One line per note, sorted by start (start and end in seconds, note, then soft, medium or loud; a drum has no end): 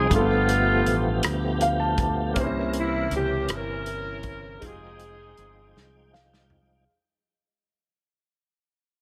0.00 0.12 G#4 loud
0.09 0.82 G1 medium
0.09 1.20 G2 soft
0.09 2.33 F3 medium
0.09 2.32 G3 medium
0.09 0.17 A3 soft
0.09 2.33 A3 medium
0.09 2.33 B3 medium
0.09 0.18 F4 medium
0.09 kick medium
0.09 closed hi-hat medium
0.13 1.21 A3 medium
0.13 1.21 B3 medium
0.13 1.21 F4 medium
0.13 2.34 F4 medium
0.13 2.35 A4 medium
0.18 2.36 B3 medium
0.18 2.36 G4 medium
0.49 closed hi-hat soft
0.86 1.21 A1 medium
0.86 closed hi-hat soft
1.23 2.33 D2 medium
1.23 cross-stick medium
1.23 closed hi-hat medium
1.61 1.79 F5 medium
1.61 closed hi-hat soft
1.80 1.97 A5 medium
1.98 2.34 A5 medium
1.98 kick medium
1.98 closed hi-hat soft
2.34 3.08 C2 medium
2.34 4.58 C3 medium
2.34 3.45 C3 medium
2.34 4.58 E3 medium
2.34 4.57 A#3 medium
2.34 4.58 C#4 medium
2.34 4.58 A#4 medium
2.34 kick medium
2.34 closed hi-hat medium
2.38 2.44 D#4 soft
2.38 4.60 C5 medium
2.44 4.62 E4 medium
2.73 closed hi-hat soft
2.79 3.12 E4 medium
3.11 3.46 C#2 medium
3.11 closed hi-hat soft
3.16 3.51 G4 medium
3.48 4.58 G1 medium
3.48 4.60 C#4 medium
3.48 cross-stick loud
3.48 closed hi-hat medium
3.53 4.60 E4 medium
3.53 4.64 A#4 loud
3.86 closed hi-hat soft
4.23 kick medium
4.23 closed hi-hat soft
4.60 5.34 F1 medium
4.60 6.84 F3 medium
4.60 6.84 G#3 medium
4.60 6.84 D#4 medium
4.60 6.86 F4 soft
4.60 6.84 G5 medium
4.60 kick medium
4.60 closed hi-hat medium
4.64 6.10 C4 medium
4.64 6.10 D#4 medium
4.64 4.71 G4 soft
4.64 6.14 G#4 medium
4.73 6.90 G#4 medium
4.99 closed hi-hat soft
5.37 5.73 G1 medium
5.37 closed hi-hat soft
5.76 6.85 C2 medium
5.76 snare soft
6.14 6.85 F5 medium
6.14 snare medium
6.34 snare medium
6.50 floor tom medium